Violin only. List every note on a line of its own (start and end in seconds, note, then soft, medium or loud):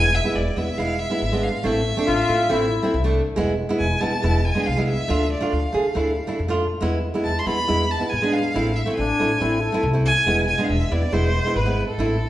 0.00 0.16 G#5 loud
0.15 0.37 E5 loud
0.35 0.59 D5 medium
0.57 0.79 E5 medium
0.78 1.00 F5 loud
1.01 1.45 E5 medium
1.43 1.68 F5 medium
1.66 3.16 E5 loud
3.80 4.02 G#5 medium
4.01 4.46 A5 medium
4.45 4.68 G#5 medium
4.66 4.81 F5 loud
4.81 4.89 F5 medium
4.88 5.31 E5 loud
5.33 5.55 D5 medium
5.54 6.39 F5 medium
7.24 7.41 A5 loud
7.39 7.48 C6 medium
7.46 7.92 B5 loud
7.91 8.11 A5 medium
8.10 8.34 G#5 loud
8.33 8.77 F5 loud
8.76 8.95 E5 medium
8.96 9.79 G#5 loud
10.06 10.46 G#5 loud
10.48 10.66 G#5 medium
10.64 10.71 F5 medium
10.69 10.93 E5 medium
10.92 11.14 D5 medium
11.13 11.58 C5 loud
11.57 11.88 B4 medium
11.89 12.29 A4 medium